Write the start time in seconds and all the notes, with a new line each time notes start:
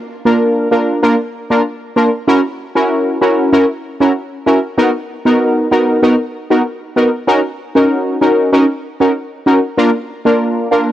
0.25 A#3 D4 F4 A#4
0.71 A#3 D4 F4 A#4
1.02 A#3 D4 F4 A#4
1.50 A#3 D4 F4 A#4
1.96 A#3 D4 F4 A#4
2.27 C#4 E4 F#4 A#4
2.75 C#4 E4 F#4 A#4
3.21 C#4 E4 F#4 A#4
3.52 C#4 E4 F#4 A#4
4.00 C#4 E4 F#4 A#4
4.46 C#4 E4 F#4 A#4
4.78 B3 D#4 F#4 A#4
5.25 B3 D#4 F#4 A#4
5.71 B3 D#4 F#4 A#4
6.03 B3 D#4 F#4 A#4
6.50 B3 D#4 F#4 A#4
6.96 B3 D#4 F#4 A#4
7.27 C#4 D#4 F#4 A#4
7.75 C#4 D#4 F#4 A#4
8.21 C#4 D#4 F#4 A#4
8.53 C#4 D#4 F#4 A#4
9.00 C#4 D#4 F#4 A#4
9.46 C#4 D#4 F#4 A#4
9.77 A#3 D4 F4 A#4
10.25 A#3 D4 F4 A#4
10.71 A#3 D4 F4 A#4